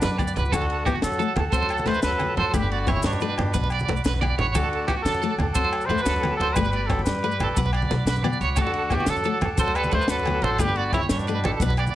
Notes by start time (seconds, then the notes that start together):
Already playing: B2 D4 F#5 B5 D6
0.02 F#2 B4, snare, closed hi-hat, low conga, maracas
0.12 low conga
0.18 B3 D5, kick, closed hi-hat, high conga, low conga, low agogo
0.27 maracas
0.36 C#2 B4, closed hi-hat, low conga
0.45 maracas
0.52 D2 D3 A3 F#4 A4 F#5 A5, kick, ride, high conga, low agogo, maracas
0.61 low conga
0.70 ride
0.85 E3 B3 F#4 G4, kick, ride, low conga, low agogo, maracas
0.96 high conga
1.02 D3 F#3 A4, snare, ride, maracas
1.12 low conga, maracas
1.19 A3 A4, ride, maracas
1.36 D2, ride, high conga, low conga, low agogo
1.52 D2 C4 A4 C5 A5, kick, ride, maracas
1.56 F#3
1.63 low conga
1.69 A4, ride, low agogo, maracas
1.77 high conga, maracas
1.86 D2 A3 B4 C5, snare, ride, low conga
1.94 maracas
2.02 D2 F#3 A4 B4, snare, ride, maracas
2.12 low conga
2.19 B3, ride, high conga, low agogo
2.37 D2 F#3 A4 C5, ride, low conga
2.53 G1 D3 A3 G4 B4 G5 B5, kick, ride, high conga, low agogo, maracas
2.64 low conga
2.72 D3 F#4 D5, ride
2.86 B3 E4 C#5, kick, ride, low conga, low agogo, maracas
2.91 C#3
2.97 high conga
3.02 G2 D4, snare, ride, maracas
3.08 B2, maracas
3.13 low conga
3.20 A3 B4, ride, maracas
3.38 G1, ride, high conga, low conga, low agogo
3.54 B1 B3 B4 F#5 B5, kick, ride, maracas
3.64 low conga
3.70 D5, ride, low agogo, maracas
3.79 high conga, maracas
3.88 B1 A3, ride, low conga
3.96 maracas
4.04 B1 B4, snare, ride, low conga, maracas
4.14 low conga
4.21 B3 D5, ride, high conga, low agogo
4.38 A1 C#5, ride, low conga
4.55 D2 D3 A3 F#4 A4 A5 D6, kick, ride, high conga, low agogo, maracas
4.63 low conga
4.73 ride
4.87 E3 B3 F#4 G4, kick, ride, low conga, low agogo, maracas
5.03 D3 F#3 A4, snare, ride, maracas
5.14 low conga, maracas
5.22 A3 A4, ride, maracas
5.38 D2, ride, high conga, low conga, low agogo
5.54 D2 F#3 C4 A4 C5 F#5 A5, kick, ride, maracas
5.65 low conga
5.72 muted clean electric guitar stroke, ride, low agogo, maracas
5.81 maracas
5.86 D2 A3 B4 C5, ride
5.90 A3, low conga
5.98 maracas
6.03 D2 F#3 A4 B4, snare, ride, maracas
6.16 low conga
6.23 B3, ride, high conga, low agogo
6.37 D2 F#3 A4 C5, ride, low conga
6.53 G1 G3 A3 B4 G5 B5, kick, ride, low agogo, maracas
6.57 high conga
6.64 low conga, maracas
6.70 G3 B4 D5, ride, maracas
6.87 F#3 B3 A4, muted clean electric guitar stroke, kick, ride, low agogo, maracas
6.91 low conga
6.99 high conga
7.04 G2 G3 B4, snare, ride, maracas
7.15 low conga
7.24 A3 B4, ride
7.31 low conga, maracas
7.40 A1 A4, ride, high conga, low conga, low agogo, maracas
7.49 low conga
7.57 B1 B3 B4 F#5, kick, ride, maracas
7.66 low conga
7.73 D5, ride, low conga, low agogo
7.82 high conga
7.90 B1 A3, snare, ride, low conga
8.00 low conga
8.05 B1 B4, snare, ride, maracas
8.16 low conga, maracas
8.24 B3 D5, ride, high conga, low conga, low agogo
8.33 maracas
8.41 C#2 C#5, ride, maracas
8.50 low conga
8.56 D2 A3 A4 F#5 A5, kick, ride, high conga, low agogo, maracas
8.61 D3 F#4
8.67 low conga
8.74 ride
8.90 B3 F#4 G4, kick, ride, low conga, low agogo, maracas
8.96 E3
9.00 high conga
9.06 D3 F#3 A4, snare, ride, maracas
9.16 low conga, maracas
9.24 A3 A4, ride, maracas
9.41 D2, ride, high conga, low conga, low agogo
9.57 D2 C4 A4 C5 A5, kick, ride, maracas
9.61 F#3
9.68 low conga
9.75 G3 A4 B4, ride, low agogo, maracas
9.83 high conga, maracas
9.91 D2 A3 B4 C5, ride, low conga
10.02 maracas
10.08 D2 F#3 A4 B4, snare, ride, low conga, maracas
10.19 low conga
10.25 B3, ride, high conga, low agogo
10.42 A1 F#3 A4 C5, ride, low conga
10.58 G1 D3 A3 G4 B4 G5 B5, kick, ride, high conga, low agogo, maracas
10.69 low conga
10.76 D3 F#4 D5, ride
10.93 C#3 B3 E4 C#5, kick, ride, low conga, low agogo, maracas
11.03 high conga
11.09 G2 B2 D4, snare, ride, maracas
11.19 low conga, maracas
11.27 A3 B4, ride, maracas
11.44 A1 A4, ride, high conga, low conga, low agogo
11.59 B1 B3 B4 F#5, kick, ride, maracas
11.70 low conga
11.77 D5, ride, low agogo, maracas
11.87 high conga, maracas